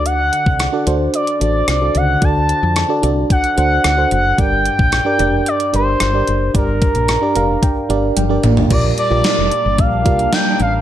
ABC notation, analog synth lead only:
X:1
M:4/4
L:1/8
Q:1/4=111
K:Gm
V:1 name="Analog synth lead"
^f3 z d d d f | a3 z ^f f f f | g4 d c3 | B6- B z |
d d3 f2 g f |]